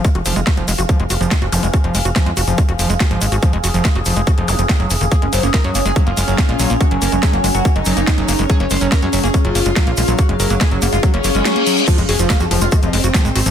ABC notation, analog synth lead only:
X:1
M:4/4
L:1/16
Q:1/4=142
K:Fphr
V:1 name="Analog synth lead"
z16 | z16 | z16 | A D c D B D D A D F6 z |
G G, B G, A G, G, G G, E6 z | A D c D B D D A D F6 z | G G, B G, A G, G, F G, D6 z | F F, A F, F F, F, F F, C6 z |]